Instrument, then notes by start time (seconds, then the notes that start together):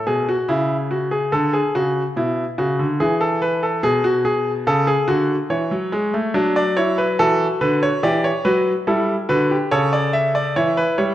grand piano
0.07 B2 G#4
0.29 F#4
0.48 C#3 E4
0.91 F#4
1.11 G#4
1.32 D3 A4
1.53 G#4
1.75 C#3 F#4
2.16 B2 E4
2.58 C#3 F#4
2.79 D3
3.00 E3 G#4
3.21 A4
3.42 B4
3.63 A4
3.83 B2 G#4
4.04 F#4
4.25 G#4
4.67 C#3 A4
4.87 G#4
5.08 D3 F#4
5.50 E3 C#5
5.71 F#3
5.92 G#3
6.14 A3
6.34 F#3 D4
6.56 D5
6.77 E4 C#5
6.98 B4
7.19 E3 F#4 A4
7.61 D3 B4
7.83 C#5
8.03 E3 G4 D5
8.24 C#5
8.45 F#3 F#4 B4
8.87 G3 E4 A4
9.29 D3 F#4 B4
9.51 G4
9.71 C#3 A4 C#5
9.93 D5
10.13 E5
10.35 D5
10.56 E3 E4 C#5
10.77 B4
10.98 G3 C#5